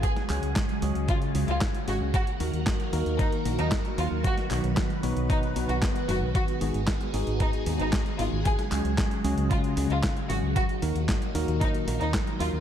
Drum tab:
HH |xxoxxxoxxxoxxxo-|xxoxxxoxxxoxxxo-|xxoxxxoxxxoxxxo-|xxoxxxoxxxoxxxo-|
CP |--x-x-------x---|----x-------x---|--x-x-------x---|----x-------x---|
SD |-o--o-------o---|----o-------o---|-o--o-------o---|----o-------o---|
BD |o---o---o---o---|o---o---o---o---|o---o---o---o---|o---o---o---o---|

HH |xxoxxxoxxxoxxxo-|xxoxxxoxxxoxxxo-|
CP |--x-x-------x---|----x-------x---|
SD |-o--o-------o---|----o-------o---|
BD |o---o---o---o---|o---o---o---o---|